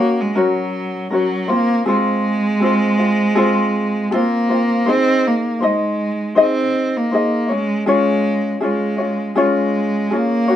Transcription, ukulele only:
0.00 0.35 C#4 soft
0.00 0.35 F#4 soft
0.00 0.36 C#5 soft
0.35 1.11 C#4 medium
0.35 1.11 F#4 medium
0.35 1.09 A#4 medium
0.35 1.12 C#5 medium
1.11 1.49 C#4 medium
1.11 1.49 F#4 medium
1.11 1.49 A#4 medium
1.11 1.48 C#5 medium
1.48 1.85 C4 soft
1.48 1.86 F4 medium
1.48 1.86 C5 medium
1.86 2.61 C4 medium
1.86 2.61 F4 medium
1.86 2.60 G#4 medium
1.86 2.64 C5 medium
2.60 2.99 C4 medium
2.60 2.98 F4 medium
2.60 2.63 G#4 medium
2.60 2.96 C5 medium
2.98 3.35 C4 soft
2.98 3.36 F4 soft
2.98 3.35 C5 medium
3.35 4.12 C4 medium
3.35 4.12 F4 medium
3.35 4.11 G#4 loud
3.35 4.14 C5 medium
4.11 4.50 C4 medium
4.11 4.50 F4 medium
4.11 4.14 G#4 medium
4.11 4.48 C5 medium
4.49 4.87 C4 soft
4.49 4.88 F4 medium
4.49 4.85 C5 medium
4.86 5.61 D#4 medium
4.86 5.62 G#4 medium
4.86 5.59 C5 medium
4.86 5.60 D#5 medium
5.60 6.35 D#4 medium
5.60 6.34 C5 medium
5.60 6.35 D#5 medium
6.35 7.11 D#4 medium
6.35 7.13 G#4 medium
6.35 7.10 C5 medium
6.35 7.11 D#5 medium
7.11 7.50 D#4 medium
7.11 7.50 G#4 medium
7.11 7.49 C5 medium
7.11 7.48 D#5 medium
7.49 7.86 C#4 soft
7.49 7.86 C#5 medium
7.86 8.61 C#4 medium
7.86 8.62 F4 medium
7.86 8.59 G#4 medium
7.86 8.64 C#5 medium
8.61 8.99 C#4 medium
8.61 8.99 F4 medium
8.61 8.99 G#4 medium
8.61 8.97 C#5 medium
8.98 9.35 C#4 soft
8.98 9.36 F4 soft
8.98 9.36 C#5 soft
9.36 10.11 C#4 medium
9.36 10.12 F4 medium
9.36 10.10 G#4 medium
9.36 10.14 C#5 medium
10.11 10.49 C#4 medium
10.11 10.49 F4 medium
10.11 10.49 G#4 medium
10.11 10.47 C#5 medium
10.48 10.56 C#4 soft
10.48 10.56 F#4 medium
10.48 10.56 C#5 medium

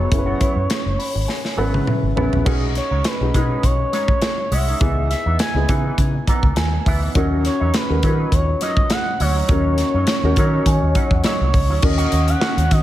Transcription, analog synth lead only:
0.00 2.14 C#5 medium
2.77 3.08 C#5 medium
3.07 3.66 B4 medium
3.64 3.93 C#5 medium
3.94 4.55 C#5 medium
4.53 5.09 E5 loud
5.10 5.37 E5 loud
5.40 5.94 G#5 loud
7.46 7.77 C#5 medium
7.75 8.35 B4 medium
8.33 8.61 C#5 loud
8.62 8.93 D#5 medium
8.92 9.22 F#5 loud
9.21 11.25 C#5 loud
11.26 11.86 C#5 medium
11.84 12.31 D#5 loud
12.29 12.73 F#5 loud
12.72 12.83 D#5 medium

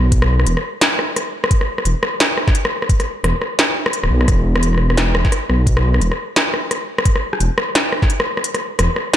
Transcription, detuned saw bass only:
0.00 0.46 B1 loud
0.47 0.56 E1 medium
1.85 1.94 E1 medium
3.23 3.33 E1 medium
4.03 4.10 D1 medium
4.10 4.27 B1 loud
4.28 5.14 E1 loud
5.14 5.24 E1 medium
5.49 6.00 B1 loud
6.01 6.10 E1 medium
7.40 7.49 E1 medium
8.79 8.88 E1 medium

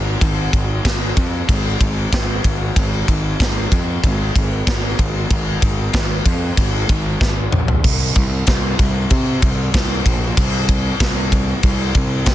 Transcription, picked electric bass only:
0.00 0.15 G#1 loud
0.22 0.46 G#1 loud
0.53 0.78 G#1 loud
0.85 1.10 G#1 medium
1.17 1.42 F2 loud
1.49 1.74 G#1 loud
1.80 2.05 G#1 loud
2.13 2.38 G#1 medium
2.44 2.69 G#1 medium
2.77 3.01 G#1 loud
3.08 3.33 G#1 loud
3.40 3.65 G#1 loud
3.72 3.97 F2 loud
4.04 4.28 G#1 loud
4.36 4.60 G#1 medium
4.67 4.92 G#1 loud
4.99 5.24 G#1 medium
5.30 5.55 G#1 loud
5.62 5.87 G#1 medium
5.94 6.19 G#1 loud
6.26 6.51 F2 medium
6.58 6.82 G#1 medium
6.89 7.14 G#1 medium
7.21 7.46 G#1 medium
7.53 7.77 A#1 medium
7.85 8.10 C2 loud
8.16 8.42 C2 loud
8.48 8.74 C2 loud
8.79 9.05 C2 loud
9.11 9.37 C3 loud
9.42 9.69 C2 medium
9.74 10.00 C2 loud
10.06 10.32 A#1 medium
10.37 10.90 C2 loud
11.00 11.53 C2 medium
11.63 11.90 C2 loud
11.95 12.21 C2 medium
12.27 12.35 C2 loud

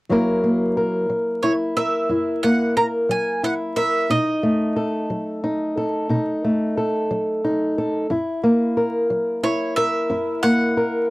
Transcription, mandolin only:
1.43 1.52 C#5 medium
1.77 2.45 E5 medium
2.43 2.74 F#5 medium
2.77 2.86 A#5 medium
3.11 3.41 G#5 medium
3.44 3.53 F#5 medium
3.76 4.11 E5 medium
4.11 5.06 D#5 medium
9.44 9.74 C#5 medium
9.76 10.39 E5 medium
10.43 11.05 F#5 loud

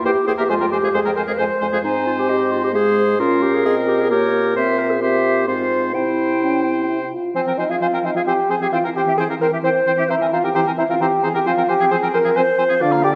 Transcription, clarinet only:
0.05 0.27 G4 medium
0.28 0.33 G#4 medium
0.39 0.51 G4 medium
0.50 0.71 F4 medium
0.71 0.96 G4 medium
0.94 1.16 G#4 medium
1.16 1.40 A#4 medium
1.38 1.83 C5 medium
1.84 2.06 D#4 medium
2.07 2.12 F4 medium
2.18 2.28 G4 medium
2.29 2.53 G4 medium
2.52 2.63 F4 medium
2.64 2.69 G4 medium
2.75 3.21 G#4 medium
3.20 3.44 F4 medium
3.42 3.55 G4 medium
3.54 3.65 G#4 medium
3.65 3.76 G#4 medium
3.88 4.01 G4 medium
4.00 4.10 G#4 medium
4.11 4.55 G4 medium
4.56 4.80 C5 medium
4.79 4.92 A#4 medium
4.91 5.03 G#4 medium
5.01 5.49 G4 medium
5.47 5.93 F4 medium
5.94 6.86 E4 soft
7.36 7.41 C4 soft
7.47 7.52 C4 soft
7.58 7.64 C4 soft
7.70 7.75 C4 soft
7.81 7.86 C4 soft
7.92 7.97 C4 soft
8.04 8.09 C4 soft
8.15 8.20 C4 soft
8.27 8.32 C4 medium
8.49 8.54 C4 soft
8.60 8.66 C4 soft
8.72 8.77 C4 medium
8.84 8.89 C4 soft
8.95 9.01 C4 soft
9.06 9.12 C4 soft
9.18 9.23 C4 soft
9.30 9.35 C4 soft
9.42 9.47 C4 soft
9.53 9.58 C4 soft
9.64 9.69 C4 medium
9.87 9.92 C4 soft
9.99 10.04 C4 soft
10.10 10.15 C4 soft
10.21 10.26 C4 soft
10.33 10.38 C4 soft
10.43 10.49 C4 soft
10.55 10.61 C4 medium
10.67 10.72 C4 soft
10.78 10.83 C4 soft
10.90 10.95 C4 medium
11.02 11.07 C4 medium
11.24 11.29 C4 soft
11.35 11.40 C4 medium
11.47 11.52 C4 medium
11.58 11.63 C4 soft
11.70 11.74 C4 soft
11.82 11.86 C4 medium
11.91 11.96 C4 medium
12.03 12.08 C4 medium
12.14 12.19 C4 soft
12.26 12.31 C4 medium
12.37 12.42 C4 medium
12.59 12.64 C4 medium
12.70 12.75 C4 medium
12.81 12.94 D4 medium
12.93 13.05 A#3 soft
13.04 13.15 D4 soft

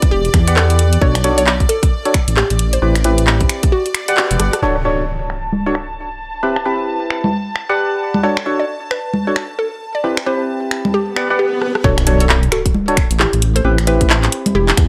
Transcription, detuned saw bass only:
0.11 0.29 E1 medium
0.34 0.98 E2 loud
1.02 1.65 B1 loud
2.28 2.43 A1 loud
2.51 2.78 A1 medium
2.82 3.46 A1 loud
4.31 4.37 E1 medium
4.40 4.50 G1 medium
11.84 12.48 B1 loud
13.11 13.26 A1 loud
13.33 13.61 A1 medium
13.65 14.28 A1 loud
14.55 14.73 E1 medium
14.77 14.88 E2 loud

